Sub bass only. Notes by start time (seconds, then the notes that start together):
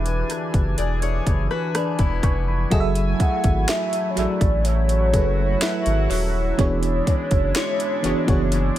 Already playing: E1
0.54 F#1
0.78 E1
1.27 F#1
1.99 E1
2.23 F1
2.72 F#1
3.44 G#1
4.17 A1
4.41 A1
5.14 F#1
5.86 G#1
6.10 D#1
6.59 E1
7.31 F#1
8.04 F#1
8.28 F#1